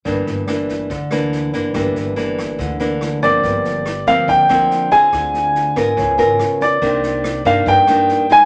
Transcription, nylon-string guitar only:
\new Staff \with { instrumentName = "Nylon-string guitar" } { \time 4/4 \key g \dorian \tempo 4 = 142 << { <e bes d'>4 <e bes d'>4 r8 <e bes d'>4 <e bes d'>8 | <e bes d'>4 <e bes d'>4. <e bes d'>4 <f bes c'>8~ | \key g \minor <f bes c'>4 r8 <f bes c'>4 <f bes c'>4 <c' f' aes'>8~ | <c' f' aes'>4. <b f' bes'>4 <b eis' ais'>4. |
<ees bes d'>4. <ees bes d'>4 <ees bes d'>4 <aes ees'>8 | } \\ { g,2 d2 | g,2 d2 | g,2 d2 | d2 cis2 |
c2 g,2 | } >> }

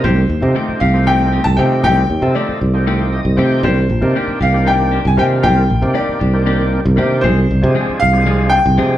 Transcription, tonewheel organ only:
\new Staff \with { instrumentName = "Tonewheel organ" } { \time 7/8 \key c \minor \tempo 4 = 117 << { r2. r8 | r2 r8 ees''8 g''8 | r2. r8 | r2. r8 |
r2. r8 | } \\ { r8. <f a c' ees' g'>8. r16 <f a c' ees' g'>4 r16 <f a c' ees' g'>8~ | <f a c' ees' g'>8 r16 <f a c' ees' a'>8. r16 <f a c' ees' g'>4 r16 <f a c' ees' g'>8 | r8. <ees bes c' d' g'>8. r16 <ees bes c' d' g'>4 r16 <ees bes c' d' f'>8~ | <ees bes c' d' f'>8 r16 <ees bes c' d' g'>8. r16 <ees bes c' d' g'>4 r16 <ees bes c' d' g'>8 |
r8. <f aes c' d' aes'>8. r16 <f aes c' d' aes'>4 r16 <f aes c' d' aes'>8 | } >> }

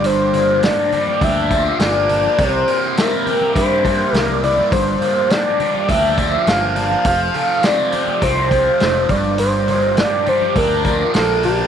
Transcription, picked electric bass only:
\new Staff \with { instrumentName = "Picked electric bass" } { \clef bass \time 4/4 \key g \dorian \tempo 4 = 103 g,,4. r8 d,4 g,,4 | c,8 r4. g,4 c,4 | g,,8 r4. d,4 g,,4 | f,,8 r4. c,4 f,,8 g,,8~ |
g,,4. r8 d,4 bes,,4 | }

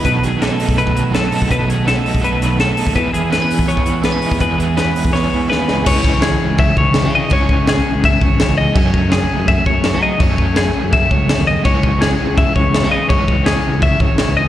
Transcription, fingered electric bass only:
\new Staff \with { instrumentName = "Fingered electric bass" } { \clef bass \time 4/4 \key cis \minor \tempo 4 = 166 b,,8 r4 r16 b,,8 b,,8 r4 b,,16 | b,,4.~ b,,16 b,,16 b,,4.~ b,,16 dis,16 | e,8 r4 r16 e,8 e,8 r4 e,16 | e,4.~ e,16 e,16 e,8 e,8 dis,8 cis,8 |
cis,4.~ cis,16 cis,8. cis,8. cis8. | cis,4.~ cis,16 cis,8. gis,,8. cis,8. | fis,4.~ fis,16 fis,8. fis,8. fis8. | fis,4.~ fis,16 fis,8. cis,8. dis,8. |
cis,4.~ cis,16 cis,8. cis,8. cis8. | cis,4.~ cis,16 cis,8. gis,,8. cis,8. | }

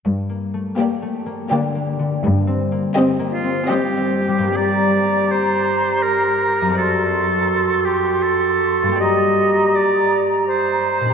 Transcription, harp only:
<<
  \new Staff \with { instrumentName = "Harp" } { \time 3/4 \key g \minor \tempo 4 = 82 r2. | r2. | <g, bes g' d''>2. | <fis, c' a' d''>2. |
<g, bes g' d''>2. | }
  \new Staff \with { instrumentName = "Harp" } { \time 3/4 \key g \minor \tuplet 3/2 { g,8 bes8 a8 bes8 a8 bes8 d8 bes8 d8 } | \tuplet 3/2 { g,8 c'8 bes8 c'8 bes8 c'8 g8 c'8 g8~ } | g2. | r2. |
r2. | }
>>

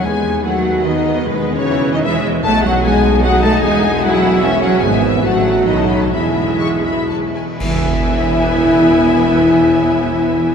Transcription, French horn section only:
\new Staff \with { instrumentName = "French horn section" } { \time 3/4 \key e \major \tempo 4 = 148 gis'4 fis'4 dis'4 | b8. cis'4 dis'16 e'8 r8 | a'8 fis'8 gis'4 fis'8 a'8 | gis'4 fis'4 e'8 fis'8 |
gis'8 e'8 fis'4 dis'4 | e'2 r4 | e'2.~ | e'2. | }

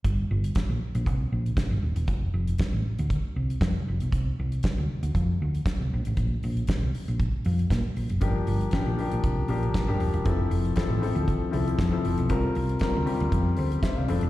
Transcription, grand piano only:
\new Staff \with { instrumentName = "Grand piano" } { \time 4/4 \key g \dorian \tempo 4 = 117 << { r1 | r1 | r1 | r1 |
r1 | r1 | r2 r8 <a' c''>8 <c'' e''>16 <d'' f''>8 r16 | } \\ { r1 | r1 | r1 | r1 |
<f bes d' g'>8 r8 <f bes d' g'>16 r16 <f bes d' g'>8 r8 <f bes d' g'>8 r16 <f bes d' g'>8 r16 | <f c' e' a'>8 r8 <f c' e' a'>16 r16 <f c' e' a'>8 r8 <f c' e' a'>8 r16 <f c' e' a'>8 r16 | <g c' f' bes'>8 r8 <g c' f' bes'>16 r16 <g c' f' g'>8 r4. <f c' d' a'>8 | } >> }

